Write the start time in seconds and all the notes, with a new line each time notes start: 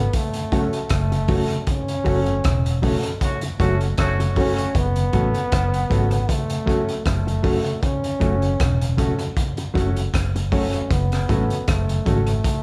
Already playing: B3
0.13 A3, kick, closed hi-hat
0.34 F#2 C#3, closed hi-hat
0.52 F#3 A3 C#4 F#4 A4, kick, closed hi-hat
0.73 closed hi-hat
0.89 F#1, kick, cross-stick, closed hi-hat
0.94 A3
1.12 F#2 C#3, muted clean electric guitar stroke, closed hi-hat
1.28 F#3 A3 C#4 F#4 A4, kick, open hi-hat
1.50 F#2 C#3, closed hi-hat
1.67 C#4, kick, closed hi-hat
1.88 F#2 C#3, closed hi-hat
2.04 F#1 F#3 A3 C#4 F#4 A4, kick, open hi-hat
2.26 F#2 C#3, closed hi-hat
2.44 E1, kick, cross-stick, closed hi-hat
2.65 F#2 C#3, closed hi-hat
2.82 F#3 A3 C#4 F#4 A4, kick, open hi-hat
3.03 F#2 C#3, closed hi-hat
3.21 A3 C#4 F#4, kick, closed hi-hat
3.41 F#2 C#3, muted clean electric guitar stroke, closed hi-hat
3.59 F#1 F#3 A3 C#4 F#4 A4, kick, closed hi-hat
3.81 closed hi-hat
3.98 F#1 A3 C#4 F#4, kick, cross-stick, closed hi-hat
4.19 F#2 C#3, muted clean electric guitar stroke, closed hi-hat
4.36 F#3 A3 C#4 F#4 A4, kick, open hi-hat
4.58 F#2 C#3, closed hi-hat
4.75 F#1 B3, kick, closed hi-hat
4.96 F#2 C#3, closed hi-hat
5.12 A1 F#3 A3 C#4 F#4 A4, kick, closed hi-hat
5.34 F#2 C#3, closed hi-hat
5.52 F#1, kick, cross-stick, closed hi-hat
5.73 F#2 C#3, closed hi-hat
5.90 G#1 F#3 A3 C#4 F#4 A4, kick, closed hi-hat
6.11 F#2 C#3, closed hi-hat
6.29 A3, kick, closed hi-hat
6.50 F#2 C#3, closed hi-hat
6.66 F#3 A3 C#4 F#4 A4, kick, closed hi-hat
6.89 closed hi-hat
7.06 F#1 A3, kick, cross-stick, closed hi-hat
7.27 F#2 C#3, muted clean electric guitar stroke, closed hi-hat
7.43 F#3 A3 C#4 F#4 A4, kick, open hi-hat
7.65 F#2 C#3, closed hi-hat
7.83 C#4, kick, closed hi-hat
8.03 F#2 C#3, closed hi-hat
8.20 F#1 F#3 A3 C#4 F#4 A4, kick, closed hi-hat
8.42 F#2 C#3, closed hi-hat
8.60 E1, kick, cross-stick, closed hi-hat
8.81 F#2 C#3, closed hi-hat
8.97 F#3 A3 C#4 F#4 A4, kick, closed hi-hat
9.19 F#2 C#3, closed hi-hat
9.37 kick, closed hi-hat
9.57 F#2 C#3, muted clean electric guitar stroke, closed hi-hat
9.74 F#1 F#3 A3 C#4 F#4 A4, kick, closed hi-hat
9.96 closed hi-hat
10.14 F#1, kick, cross-stick, closed hi-hat
10.35 F#2 C#3, muted clean electric guitar stroke, closed hi-hat
10.52 F#3 A3 C#4 F#4 A4, kick, open hi-hat
10.74 F#2 C#3, closed hi-hat
10.91 F#1 B3, kick, closed hi-hat
11.12 F#2 C#3, cross-stick, closed hi-hat
11.29 A1 F#3 A3 C#4 F#4 A4, kick, closed hi-hat
11.50 F#2 C#3, closed hi-hat
11.68 F#1 A3, kick, cross-stick, closed hi-hat
11.89 F#2 C#3, closed hi-hat
12.06 G#1 F#3 A3 C#4 F#4 A4, kick, closed hi-hat
12.27 F#2 C#3, closed hi-hat
12.44 kick, closed hi-hat